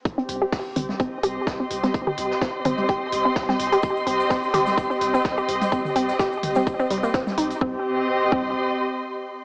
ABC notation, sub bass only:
X:1
M:4/4
L:1/8
Q:"Swing 16ths" 1/4=127
K:Cm
V:1 name="Sub bass" clef=bass
z C,, z C,, z C,, C,, C,, | z C,, z C,, z C,, C,, C,, | z C,, z C,, z C,, C,, C,, | z C,, z C,, z C,, C,, C,, |
C,, z2 C,, z4 |]